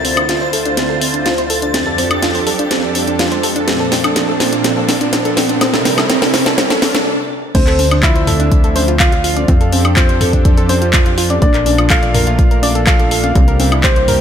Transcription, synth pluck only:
0.05 C4
0.17 D4
0.29 F4
0.41 C5
0.53 A4
0.66 D4
0.77 C4
0.90 A4
1.02 C4
1.14 D4
1.26 F4
1.38 C5
1.50 A4
1.62 D4
1.74 C4
1.87 A4
1.98 C4
2.11 D4
2.22 F4
2.35 C5
2.47 A4
2.59 D4
2.71 C4
2.83 A4
2.95 C4
3.07 D4
3.19 F4
3.32 C5
3.43 A4
3.56 D4
3.68 C4
3.80 A4
3.92 C4
4.04 D4
4.16 C4
4.28 A4
4.40 C4
4.53 D4
4.64 C4
4.77 A4
4.89 C4
5.01 D4
5.13 C4
5.25 A4
5.37 C4
5.49 D4
5.61 C4
5.74 A4
5.85 C4
5.98 A4
6.10 C4
6.22 A4
6.34 C4
6.46 A4
6.58 C4
6.70 A4
6.82 C4
6.95 A4
7.55 C4
7.67 A4
7.79 C4
7.91 D4
8.03 F4
8.15 C5
8.27 A4
8.40 D4
8.52 D4
8.64 A4
8.76 C5
8.88 F4
9.00 F4
9.12 F4
9.24 F4
9.37 D5
9.48 C4
9.61 A4
9.73 C4
9.85 D4
9.97 F4
10.09 C5
10.21 A4
10.33 D4
10.45 D4
10.57 A4
10.69 C5
10.82 F4
10.94 F4
11.06 F4
11.18 F4
11.30 D5
11.42 D4
11.54 A#4
11.66 D4
11.78 F4
11.90 A4
12.03 D5
12.15 A#4
12.27 F4
12.39 F4
12.51 A#4
12.63 D5
12.75 A4
12.87 A4
12.99 A4
13.11 A4
13.24 F5
13.35 C4
13.48 A#4
13.60 C4
13.72 E4
13.84 G4
13.96 C5
14.08 A#4

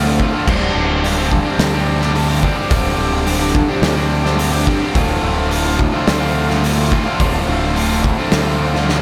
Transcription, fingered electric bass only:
Already playing: D2
0.48 D1
0.75 D1
1.59 D2
2.71 D1
2.98 D1
3.82 D2
4.95 D1
5.23 D1
6.08 D2
7.20 D1
7.47 D1
8.33 D2

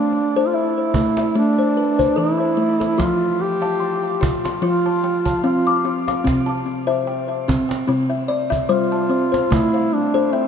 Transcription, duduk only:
Already playing: D4
0.47 F4
0.55 E4
1.37 D4
2.19 E4
3.01 F4
3.42 G4
4.66 F4
5.44 F4
8.69 F4
9.53 E4
9.94 D4
10.34 C4

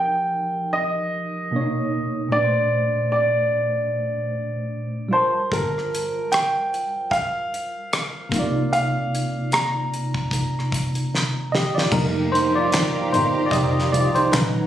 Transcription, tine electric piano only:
Already playing: F3 D#4 G4 A#4
1.51 B2 A#3 D4
1.56 C#5
1.61 D#4
2.28 A#2 A3
2.35 D4 B4
2.44 C5
5.09 G3 F4
5.14 A#4 A5
5.18 C5
8.29 C3 A#3
8.34 D#4 F4
8.39 D5
11.52 G4 D#5
11.75 F4 D5
11.92 G3 A#3 D#4 A#4
12.32 D#4 C5
12.55 F4 D5
13.12 D#4 C5
13.46 D5
13.52 G4 D#5
13.92 F4 D5
14.15 D#4 C5
14.32 A#2 D#3 C#4 D#4 B4

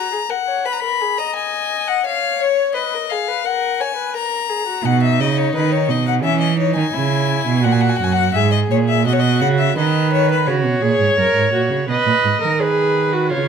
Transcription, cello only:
4.84 B2
5.20 C#3
5.55 D#3
5.89 B2
6.23 E3
6.76 D#3
6.94 C#3
7.47 B2
7.65 A#2
8.00 F#2
8.35 G#2
8.70 A#2
9.06 B2
9.41 C#3
9.77 D#3
10.47 C#3
10.65 B2
10.82 A#2
10.99 G#2
11.17 F#2
11.34 G#2
11.53 A#2
11.70 C#3
11.88 B2
12.06 A#2
12.24 G#2
12.42 D#3
13.31 C#3

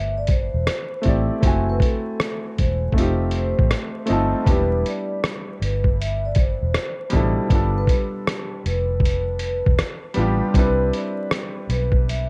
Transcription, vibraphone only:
Already playing: E5
0.18 D5
0.30 C5
1.70 B4
1.83 A4
2.59 C5
3.35 C5
4.49 B4
4.88 D5
5.63 B4
6.01 E5
6.25 D5
6.39 C5
7.78 B4
7.92 G4
8.67 B4
9.43 B4
10.57 B4
10.95 D5
11.71 B4
12.09 E5

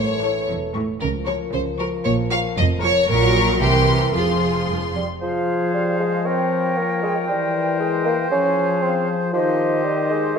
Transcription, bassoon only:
4.95 G3
5.22 F3
5.74 G3
6.00 G#3
6.26 C4
6.77 A#3
7.03 G#3
7.29 G3
7.80 G#3
8.06 A#3
8.31 C#4
8.82 C4
9.33 F3
9.85 G3
10.11 G#3

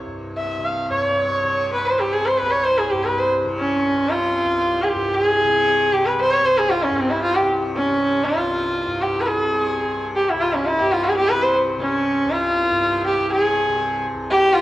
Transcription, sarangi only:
0.37 E5
0.65 F5
0.90 C#5
1.72 B4
1.86 C5
1.99 G4
2.13 G#4
2.26 C5
2.37 B4
2.51 C#5
2.64 C5
2.78 G#4
2.91 G4
3.04 B4
3.18 C5
3.59 C#4
4.10 F4
4.82 G#4
4.88 G4
5.14 G#4
5.92 G4
6.06 B4
6.19 C5
6.32 C#5
6.45 C5
6.58 G#4
6.70 F4
6.83 C#4
6.97 C4
7.10 E4
7.21 F4
7.35 G4
7.75 C#4
8.25 F4
9.02 G4
9.21 B4
9.27 G#4
10.16 G4
10.29 E4
10.41 F4
10.55 C#4
10.64 E4 F4
10.79 G4
10.92 F4
11.04 G#4
11.16 G4
11.29 B4
11.42 C5
11.80 C#4
12.30 F4
13.06 G4
13.32 G#4
14.30 G4
14.53 F4

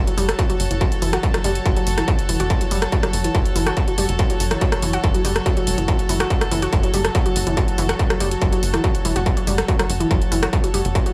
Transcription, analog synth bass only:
Already playing: F#1
0.18 F#1
0.60 F#1
0.71 F#1
1.02 F#1
1.45 F#1
1.66 F#1
1.87 F#1
2.29 E1
2.40 F#1
2.71 F#1
3.14 F#1
3.35 F#1
3.56 F#1
3.98 F#1
4.09 F#1
4.40 F#1
4.83 F#1
5.04 F#1
5.25 F#1
5.67 E1
5.78 F#1
6.09 F#1
6.51 F#1
6.73 F#1
6.94 F#1
7.36 F#1
7.47 F#1
7.78 F#1
8.21 F#1
8.42 F#1
8.63 F#1
9.05 E1
9.16 F#1
9.47 F#1
9.89 F#1
10.11 F#1
10.32 F#1
10.74 F#1
10.85 F#1

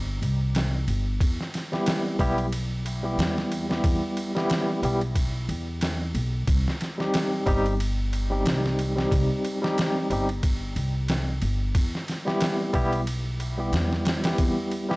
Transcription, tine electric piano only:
1.72 G3 B3 E4 G4
2.19 G3 B3 E4 G4
3.03 G3 B3 E4 G4
3.69 G3 B3 E4 G4
4.35 G3 B3 E4 G4
4.83 G3 B3 E4 G4
6.98 G3 C4 D#4 G4
7.46 G3 C4 D#4 G4
8.30 G3 C4 D#4 G4
8.95 G3 C4 D#4 G4
9.62 G3 C4 D#4 G4
10.10 G3 C4 D#4 G4
12.25 G3 B3 E4 G4
12.73 G3 B3 E4 G4
13.57 G3 B3 E4 G4
14.24 G3 B3 E4 G4
14.88 G3 B3 E4 G4

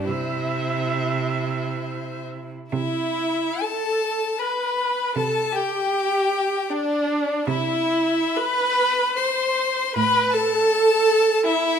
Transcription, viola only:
0.07 E5
2.72 E4
3.61 A4
4.40 B4
5.17 A4
5.55 G4
6.70 D4
7.48 E4
8.36 B4
9.16 C5
9.96 B4
10.33 A4
11.45 E4

